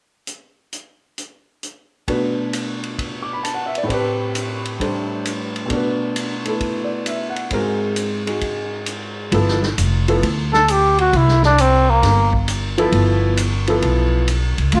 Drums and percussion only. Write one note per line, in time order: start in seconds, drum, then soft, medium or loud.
0.27 closed hi-hat soft
0.73 closed hi-hat soft
1.18 closed hi-hat soft
1.63 closed hi-hat soft
2.08 kick soft
2.08 ride soft
2.53 hi-hat pedal medium
2.53 ride medium
2.83 ride soft
2.99 kick soft
2.99 ride soft
3.45 hi-hat pedal soft
3.45 ride soft
3.75 ride soft
3.89 kick soft
3.89 ride medium
4.35 hi-hat pedal medium
4.35 ride medium
4.65 ride soft
4.80 kick soft
4.80 ride soft
5.25 hi-hat pedal medium
5.25 ride medium
5.56 ride soft
5.70 kick soft
5.70 ride medium
6.16 hi-hat pedal medium
6.16 ride medium
6.45 ride soft
6.61 kick soft
6.61 ride soft
7.06 hi-hat pedal soft
7.06 ride medium
7.36 ride soft
7.51 kick soft
7.51 ride medium
7.96 hi-hat pedal soft
7.96 ride medium
8.27 ride soft
8.41 kick soft
8.41 ride soft
8.86 hi-hat pedal soft
8.86 ride medium
9.32 kick soft
9.32 ride medium
9.48 snare soft
9.63 snare soft
9.78 hi-hat pedal medium
9.78 ride medium
10.08 ride soft
10.23 kick soft
10.23 ride medium
10.53 snare soft
10.68 hi-hat pedal medium
10.68 ride medium
10.98 ride soft
11.13 kick soft
11.13 ride medium
11.28 snare soft
11.43 snare soft
11.58 hi-hat pedal medium
11.58 ride medium
12.03 kick soft
12.03 snare soft
12.03 ride medium
12.33 kick medium
12.48 hi-hat pedal medium
12.48 ride medium
12.78 ride soft
12.92 kick soft
12.92 ride medium
13.37 hi-hat pedal medium
13.37 ride medium
13.67 ride soft
13.82 kick soft
13.82 ride medium
14.28 hi-hat pedal medium
14.28 ride medium
14.58 ride soft
14.72 kick soft
14.72 ride medium